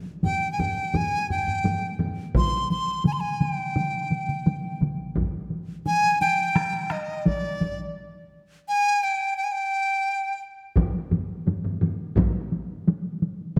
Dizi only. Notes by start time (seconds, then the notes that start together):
0.25 G5
0.52 G#5
0.60 G5
0.96 G#5
1.31 G5
2.37 C6
2.71 C6
3.07 G#5
3.12 C6
3.20 G#5
3.41 G5
5.87 G#5
6.21 G5
6.91 D#5
7.27 D5
8.68 G#5
9.04 G5
9.37 G5
9.44 G#5
9.52 G5